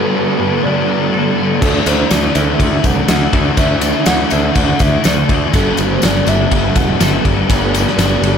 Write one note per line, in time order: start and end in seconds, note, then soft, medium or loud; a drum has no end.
0.00 0.62 G2 medium
0.00 0.41 D3 loud
0.00 0.37 G3 loud
0.00 5.51 A3 medium
0.00 0.15 B3 medium
0.00 1.59 B3 medium
0.00 1.62 B3 loud
0.00 0.40 D4 medium
0.00 0.97 D4 medium
0.00 1.65 D4 medium
0.00 0.68 A4 medium
0.00 1.61 A4 medium
0.00 0.37 B4 loud
0.16 0.64 B3 medium
0.38 0.65 G3 medium
0.38 2.35 D4 medium
0.38 0.65 B4 medium
0.42 0.64 D3 medium
0.63 1.11 G2 medium
0.63 1.13 D3 loud
0.63 1.14 G3 loud
0.63 0.88 B3 medium
0.63 1.37 D5 loud
0.89 1.36 B3 medium
1.12 1.60 G2 medium
1.12 1.38 D3 medium
1.12 1.35 G3 medium
1.12 3.09 A4 medium
1.36 1.59 D3 medium
1.36 1.60 G3 medium
1.36 1.61 B3 medium
1.61 1.79 D2 medium
1.61 2.58 D3 medium
1.61 5.50 D3 medium
1.61 3.57 E3 medium
1.61 1.86 A3 medium
1.61 2.37 A3 loud
1.61 2.33 D4 loud
1.61 5.50 E4 medium
1.61 1.87 A4 medium
1.61 kick loud
1.61 tambourine medium
1.61 crash medium
1.86 2.04 D2 medium
1.86 2.10 A3 medium
1.86 2.11 C5 medium
1.86 ride medium
1.86 tambourine medium
2.10 2.28 D2 medium
2.10 2.59 A3 medium
2.10 2.37 D5 medium
2.10 snare loud
2.10 ride loud
2.10 tambourine loud
2.34 2.53 D2 medium
2.34 2.59 A3 medium
2.34 2.61 D4 medium
2.34 3.58 E4 medium
2.34 2.60 E5 loud
2.34 ride medium
2.34 tambourine medium
2.58 2.77 D2 loud
2.58 3.06 D3 medium
2.58 2.84 A3 medium
2.58 3.09 A3 medium
2.58 3.11 D4 medium
2.58 2.87 E5 loud
2.58 kick medium
2.58 ride medium
2.84 3.01 C2 medium
2.84 3.33 A3 medium
2.84 3.34 F#5 loud
2.84 kick medium
2.84 ride medium
2.84 tambourine medium
3.07 3.27 D2 medium
3.07 3.55 D3 medium
3.07 3.35 A3 medium
3.07 3.31 D4 medium
3.07 5.05 A4 medium
3.07 snare loud
3.07 ride loud
3.07 tambourine medium
3.32 3.51 D2 medium
3.32 3.58 A3 medium
3.32 3.59 D4 medium
3.32 kick medium
3.32 ride medium
3.56 3.92 D2 loud
3.56 4.53 D3 loud
3.56 5.53 E3 medium
3.56 3.82 A3 medium
3.56 4.33 A3 loud
3.56 4.29 D4 loud
3.56 3.80 E5 loud
3.56 kick loud
3.56 ride medium
3.56 tambourine medium
3.81 4.07 A3 medium
3.81 4.08 E5 loud
3.81 ride medium
3.81 tambourine medium
4.06 4.24 D2 medium
4.06 4.56 A3 medium
4.06 4.32 F#5 loud
4.06 snare loud
4.06 ride loud
4.06 tambourine loud
4.30 4.49 D2 medium
4.30 4.56 A3 medium
4.30 4.58 D4 medium
4.30 5.54 E4 medium
4.30 4.57 E5 loud
4.30 ride medium
4.30 tambourine medium
4.54 4.73 D2 loud
4.54 5.02 D3 medium
4.54 5.05 A3 medium
4.54 4.80 A3 medium
4.54 5.06 D4 loud
4.54 4.84 F#5 loud
4.54 kick medium
4.54 ride medium
4.79 4.97 D2 medium
4.79 5.29 A3 medium
4.79 5.08 E5 medium
4.79 kick medium
4.79 ride medium
4.79 tambourine medium
5.04 5.23 D2 medium
5.04 5.52 D3 medium
5.04 5.31 A3 medium
5.04 5.28 D4 medium
5.04 5.57 A4 medium
5.04 5.42 D5 medium
5.04 snare loud
5.04 ride medium
5.04 tambourine medium
5.28 5.46 D2 medium
5.28 5.54 A3 medium
5.28 5.55 A3 medium
5.28 8.38 D4 medium
5.28 kick medium
5.28 ride medium
5.52 5.71 G1 loud
5.52 6.51 G2 loud
5.52 6.28 D3 medium
5.52 6.26 G3 loud
5.52 8.38 A3 medium
5.52 8.38 B3 medium
5.52 5.77 B3 medium
5.52 7.49 B3 medium
5.52 8.38 G4 medium
5.52 5.81 A4 loud
5.52 kick loud
5.52 ride medium
5.52 tambourine medium
5.57 7.52 D4 medium
5.77 5.96 G1 medium
5.77 6.01 B3 medium
5.77 6.06 C5 medium
5.77 ride medium
5.77 tambourine medium
6.02 6.20 G1 medium
6.02 6.50 B3 medium
6.02 6.30 D5 loud
6.02 snare loud
6.02 ride medium
6.02 tambourine medium
6.26 6.45 G1 medium
6.26 6.52 D3 medium
6.26 6.54 G3 medium
6.26 8.22 D4 medium
6.26 6.52 E5 medium
6.26 ride medium
6.26 tambourine medium
6.51 6.69 G1 medium
6.51 6.99 G2 medium
6.51 7.00 D3 medium
6.51 7.02 G3 loud
6.51 6.75 B3 medium
6.51 6.78 E5 loud
6.51 kick medium
6.51 ride medium
6.76 6.93 E1 medium
6.76 7.24 B3 medium
6.76 7.02 F#5 loud
6.76 kick medium
6.76 ride medium
6.76 tambourine medium
7.00 7.18 G1 medium
7.00 7.47 G2 medium
7.00 7.27 D3 medium
7.00 7.23 G3 medium
7.00 8.23 A4 medium
7.00 7.28 E5 loud
7.00 snare loud
7.00 ride loud
7.00 tambourine medium
7.25 7.42 G1 medium
7.25 7.49 D3 medium
7.25 7.51 G3 medium
7.25 7.48 B3 medium
7.25 7.48 D5 medium
7.25 kick medium
7.25 ride medium
7.49 7.84 G1 medium
7.49 8.38 G2 loud
7.49 8.25 D3 loud
7.49 8.22 G3 loud
7.49 7.73 B3 medium
7.49 8.38 B3 loud
7.49 8.38 D4 loud
7.49 8.38 D5 loud
7.49 kick loud
7.49 ride medium
7.49 tambourine medium
7.74 7.98 B3 medium
7.74 ride medium
7.74 tambourine medium
7.87 snare soft
7.98 8.16 G1 medium
7.98 8.38 B3 medium
7.98 snare loud
7.98 ride loud
7.98 tambourine loud
8.22 8.38 G1 medium
8.22 8.38 G3 medium
8.22 8.38 D4 medium
8.22 ride medium
8.26 8.38 D3 medium